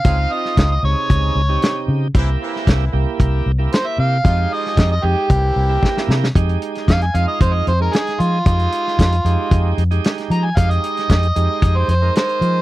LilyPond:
<<
  \new Staff \with { instrumentName = "Harmonica" } { \time 4/4 \key f \minor \tempo 4 = 114 f''8 ees''8 ees''16 ees''16 des''2 r8 | r2. c''16 e''16 f''8~ | f''8 ees''8 ees''16 ees''16 g'2 r8 | r4 f''16 aes''16 f''16 ees''16 c''16 ees''16 c''16 bes'16 aes'8 f'8~ |
f'2~ f'8 r4 bes''16 aes''16 | f''16 ees''2 c''16 c''8 c''4 | }
  \new Staff \with { instrumentName = "Tonewheel organ" } { \time 4/4 \key f \minor <c' ees' f'>4~ <c' ees' f'>16 r16 <c ees' aes'>4 r16 <c ees' g'>4 r16 | <bes e' g'>4~ <bes e' g'>16 r16 <bes e' g'>4 r16 <bes e' g'>4 r16 | <aes ees' g'>4~ <aes ees' g'>16 r16 <aes ees' g'>8 r8. <bes e' g'>4 r16 | <aes ees' g'>4~ <aes ees' g'>16 r16 <aes ees' f'>4 r16 <aes ees' aes'>4 r16 |
<aes ees' g'>4~ <aes ees' g'>16 r16 <aes ees' g'>4 r16 <aes ees' g'>4 r16 | <aes ees' g'>4~ <aes ees' g'>16 r16 <aes ees' g'>4 r16 <aes ees' bes'>4 r16 | }
  \new Staff \with { instrumentName = "Horn section" } { \time 4/4 \key f \minor <aes c' des' aes'>16 r16 <f c' f'>4 r2 r8 | <e bes c' e'>16 r16 <e bes c' e'>4 r2 r8 | <f aes ees' f'>16 r16 <f aes ees' f'>4 r8 <e bes c' e'>4. r8 | r1 |
r1 | r1 | }
  \new Staff \with { instrumentName = "Fingered electric bass" } { \clef bass \time 4/4 \key f \minor des,8 r8 des,8 des,16 r16 des,8 des,8 r8 des8 | c,8 r8 c,8 c,16 r16 c,8 c,8 r8 c8 | f,8 r8 f,8 f,16 r16 c,8 c,8 r8 c8 | f,8 r8 f,8 f,16 r16 f,8 f,8 r8 f8 |
f,8 r8 f,8 f,16 r16 f,8 f,8 r8 f8 | f,8 r8 f,8 f,16 r16 f,8 f,8 r8 f8 | }
  \new DrumStaff \with { instrumentName = "Drums" } \drummode { \time 4/4 <hh bd>8. sn16 <hh bd sn>4 <hh bd>4 <hh sn>4 | <hh bd>8. sn16 <hh bd sn>4 <hh bd>4 <hh sn>4 | <hh bd>8. sn16 <hh bd sn>4 <hh bd>4 <bd sn>16 sn16 sn16 sn16 | <hh bd>16 hh16 hh16 <hh sn>16 <hh bd sn>16 hh16 hh8 <hh bd>8 hh8 <hh sn>16 <hh sn>16 hh8 |
<hh bd>16 hh16 hh16 sn16 <hh bd sn>16 hh16 hh8 <hh bd>8 hh16 hh16 <hh sn>16 <hh sn>16 hh8 | <hh bd>16 hh16 hh16 <hh sn>16 <hh bd sn>16 hh16 hh8 <hh bd>8 hh8 <hh sn>16 hh16 hh8 | }
>>